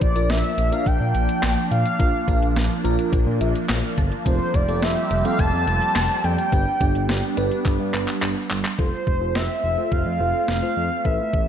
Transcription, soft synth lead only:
0, 0, Header, 1, 2, 480
1, 0, Start_track
1, 0, Tempo, 566038
1, 1692, Time_signature, 4, 2, 24, 8
1, 9738, End_track
2, 0, Start_track
2, 0, Title_t, "Soft synth lead"
2, 0, Program_c, 0, 80
2, 11, Note_on_c, 0, 74, 98
2, 250, Note_on_c, 0, 76, 101
2, 263, Note_off_c, 0, 74, 0
2, 613, Note_on_c, 0, 77, 102
2, 626, Note_off_c, 0, 76, 0
2, 733, Note_on_c, 0, 79, 118
2, 746, Note_off_c, 0, 77, 0
2, 1448, Note_off_c, 0, 79, 0
2, 1453, Note_on_c, 0, 77, 111
2, 2378, Note_off_c, 0, 77, 0
2, 3613, Note_on_c, 0, 72, 94
2, 3854, Note_on_c, 0, 74, 95
2, 3867, Note_off_c, 0, 72, 0
2, 4091, Note_on_c, 0, 76, 100
2, 4104, Note_off_c, 0, 74, 0
2, 4447, Note_off_c, 0, 76, 0
2, 4453, Note_on_c, 0, 77, 104
2, 4569, Note_on_c, 0, 81, 125
2, 4582, Note_off_c, 0, 77, 0
2, 5291, Note_on_c, 0, 79, 109
2, 5304, Note_off_c, 0, 81, 0
2, 6251, Note_off_c, 0, 79, 0
2, 7452, Note_on_c, 0, 72, 96
2, 7931, Note_on_c, 0, 76, 105
2, 7943, Note_off_c, 0, 72, 0
2, 8408, Note_on_c, 0, 77, 114
2, 8421, Note_off_c, 0, 76, 0
2, 8882, Note_off_c, 0, 77, 0
2, 8887, Note_on_c, 0, 77, 109
2, 9368, Note_on_c, 0, 76, 100
2, 9381, Note_off_c, 0, 77, 0
2, 9738, Note_off_c, 0, 76, 0
2, 9738, End_track
0, 0, End_of_file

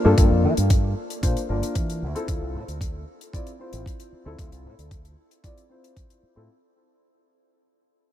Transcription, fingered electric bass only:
0, 0, Header, 1, 3, 480
1, 0, Start_track
1, 0, Key_signature, -1, "minor"
1, 0, Tempo, 526316
1, 160, Time_signature, 4, 2, 24, 8
1, 7409, End_track
2, 0, Start_track
2, 0, Title_t, "Fingered electric bass"
2, 0, Program_c, 0, 33
2, 47, Note_on_c, 0, 43, 84
2, 140, Note_off_c, 0, 43, 0
2, 162, Note_on_c, 0, 43, 92
2, 262, Note_off_c, 0, 43, 0
2, 285, Note_on_c, 0, 41, 98
2, 401, Note_on_c, 0, 52, 74
2, 415, Note_off_c, 0, 41, 0
2, 501, Note_off_c, 0, 52, 0
2, 525, Note_on_c, 0, 43, 80
2, 847, Note_off_c, 0, 43, 0
2, 1121, Note_on_c, 0, 46, 81
2, 1221, Note_off_c, 0, 46, 0
2, 1361, Note_on_c, 0, 31, 99
2, 1461, Note_off_c, 0, 31, 0
2, 1601, Note_on_c, 0, 52, 73
2, 1844, Note_on_c, 0, 38, 74
2, 1857, Note_off_c, 0, 52, 0
2, 1942, Note_off_c, 0, 38, 0
2, 2081, Note_on_c, 0, 38, 92
2, 2181, Note_off_c, 0, 38, 0
2, 2205, Note_on_c, 0, 36, 96
2, 2320, Note_on_c, 0, 45, 80
2, 2334, Note_off_c, 0, 36, 0
2, 2420, Note_off_c, 0, 45, 0
2, 2444, Note_on_c, 0, 38, 76
2, 2766, Note_off_c, 0, 38, 0
2, 3403, Note_on_c, 0, 33, 85
2, 3499, Note_off_c, 0, 33, 0
2, 3881, Note_on_c, 0, 38, 82
2, 3978, Note_off_c, 0, 38, 0
2, 4000, Note_on_c, 0, 38, 93
2, 4101, Note_off_c, 0, 38, 0
2, 4124, Note_on_c, 0, 36, 93
2, 4239, Note_on_c, 0, 45, 74
2, 4253, Note_off_c, 0, 36, 0
2, 4340, Note_off_c, 0, 45, 0
2, 4363, Note_on_c, 0, 38, 76
2, 4686, Note_off_c, 0, 38, 0
2, 5805, Note_on_c, 0, 45, 82
2, 5900, Note_off_c, 0, 45, 0
2, 7409, End_track
3, 0, Start_track
3, 0, Title_t, "Muted fingered electric bass strokes"
3, 3760, Note_on_c, 9, 29, 37
3, 3851, Note_off_c, 9, 29, 0
3, 5681, Note_on_c, 9, 29, 37
3, 5772, Note_off_c, 9, 29, 0
3, 7409, End_track
0, 0, End_of_file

